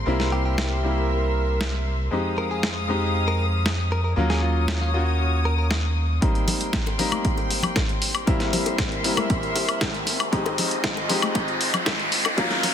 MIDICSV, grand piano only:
0, 0, Header, 1, 2, 480
1, 0, Start_track
1, 0, Key_signature, -4, "major"
1, 0, Tempo, 512821
1, 66, Time_signature, 4, 2, 24, 8
1, 11924, End_track
2, 0, Start_track
2, 0, Title_t, "Grand piano"
2, 0, Program_c, 0, 0
2, 54, Note_on_c, 0, 55, 85
2, 60, Note_on_c, 0, 58, 81
2, 66, Note_on_c, 0, 60, 79
2, 73, Note_on_c, 0, 64, 91
2, 752, Note_off_c, 0, 55, 0
2, 755, Note_off_c, 0, 58, 0
2, 758, Note_off_c, 0, 60, 0
2, 761, Note_off_c, 0, 64, 0
2, 774, Note_on_c, 0, 55, 66
2, 781, Note_on_c, 0, 58, 60
2, 787, Note_on_c, 0, 60, 61
2, 794, Note_on_c, 0, 64, 73
2, 1952, Note_off_c, 0, 55, 0
2, 1955, Note_off_c, 0, 58, 0
2, 1959, Note_off_c, 0, 60, 0
2, 1962, Note_off_c, 0, 64, 0
2, 1974, Note_on_c, 0, 56, 75
2, 1980, Note_on_c, 0, 60, 70
2, 1987, Note_on_c, 0, 63, 73
2, 1993, Note_on_c, 0, 67, 83
2, 2672, Note_off_c, 0, 56, 0
2, 2675, Note_off_c, 0, 60, 0
2, 2678, Note_off_c, 0, 63, 0
2, 2681, Note_off_c, 0, 67, 0
2, 2694, Note_on_c, 0, 56, 82
2, 2701, Note_on_c, 0, 60, 75
2, 2708, Note_on_c, 0, 63, 72
2, 2713, Note_on_c, 0, 67, 92
2, 3872, Note_off_c, 0, 56, 0
2, 3876, Note_off_c, 0, 60, 0
2, 3879, Note_off_c, 0, 63, 0
2, 3881, Note_off_c, 0, 67, 0
2, 3895, Note_on_c, 0, 58, 86
2, 3902, Note_on_c, 0, 61, 82
2, 3907, Note_on_c, 0, 65, 81
2, 3915, Note_on_c, 0, 54, 95
2, 4592, Note_off_c, 0, 58, 0
2, 4596, Note_off_c, 0, 61, 0
2, 4599, Note_off_c, 0, 65, 0
2, 4602, Note_off_c, 0, 54, 0
2, 4615, Note_on_c, 0, 58, 68
2, 4621, Note_on_c, 0, 61, 62
2, 4627, Note_on_c, 0, 65, 61
2, 4634, Note_on_c, 0, 66, 73
2, 5793, Note_off_c, 0, 58, 0
2, 5796, Note_off_c, 0, 61, 0
2, 5799, Note_off_c, 0, 65, 0
2, 5802, Note_off_c, 0, 66, 0
2, 5813, Note_on_c, 0, 55, 77
2, 5819, Note_on_c, 0, 58, 70
2, 5825, Note_on_c, 0, 60, 70
2, 5831, Note_on_c, 0, 63, 85
2, 6511, Note_off_c, 0, 55, 0
2, 6515, Note_off_c, 0, 58, 0
2, 6517, Note_off_c, 0, 60, 0
2, 6520, Note_off_c, 0, 63, 0
2, 6533, Note_on_c, 0, 55, 81
2, 6540, Note_on_c, 0, 58, 77
2, 6546, Note_on_c, 0, 60, 77
2, 6552, Note_on_c, 0, 63, 92
2, 7711, Note_off_c, 0, 55, 0
2, 7715, Note_off_c, 0, 58, 0
2, 7718, Note_off_c, 0, 60, 0
2, 7721, Note_off_c, 0, 63, 0
2, 7734, Note_on_c, 0, 55, 90
2, 7741, Note_on_c, 0, 58, 80
2, 7746, Note_on_c, 0, 60, 82
2, 7753, Note_on_c, 0, 64, 100
2, 8432, Note_off_c, 0, 55, 0
2, 8435, Note_off_c, 0, 58, 0
2, 8438, Note_off_c, 0, 60, 0
2, 8441, Note_off_c, 0, 64, 0
2, 8455, Note_on_c, 0, 55, 70
2, 8461, Note_on_c, 0, 58, 65
2, 8466, Note_on_c, 0, 60, 64
2, 8473, Note_on_c, 0, 64, 77
2, 9632, Note_off_c, 0, 55, 0
2, 9635, Note_off_c, 0, 58, 0
2, 9638, Note_off_c, 0, 60, 0
2, 9642, Note_off_c, 0, 64, 0
2, 9656, Note_on_c, 0, 56, 83
2, 9663, Note_on_c, 0, 60, 74
2, 9669, Note_on_c, 0, 63, 76
2, 9675, Note_on_c, 0, 67, 92
2, 10353, Note_off_c, 0, 56, 0
2, 10356, Note_off_c, 0, 60, 0
2, 10359, Note_off_c, 0, 63, 0
2, 10362, Note_off_c, 0, 67, 0
2, 10375, Note_on_c, 0, 56, 91
2, 10382, Note_on_c, 0, 60, 83
2, 10389, Note_on_c, 0, 63, 81
2, 10394, Note_on_c, 0, 67, 101
2, 11553, Note_off_c, 0, 56, 0
2, 11556, Note_off_c, 0, 60, 0
2, 11559, Note_off_c, 0, 63, 0
2, 11562, Note_off_c, 0, 67, 0
2, 11575, Note_on_c, 0, 54, 96
2, 11581, Note_on_c, 0, 58, 91
2, 11587, Note_on_c, 0, 61, 86
2, 11593, Note_on_c, 0, 65, 104
2, 11924, Note_off_c, 0, 54, 0
2, 11924, Note_off_c, 0, 58, 0
2, 11924, Note_off_c, 0, 61, 0
2, 11924, Note_off_c, 0, 65, 0
2, 11924, End_track
0, 0, End_of_file